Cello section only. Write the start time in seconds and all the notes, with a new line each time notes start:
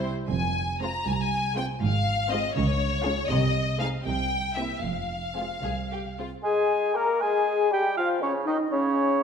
0.29 F2
1.06 C2
1.82 G#2
2.56 C#3
3.30 C3
4.05 C3
4.83 F2
5.63 C2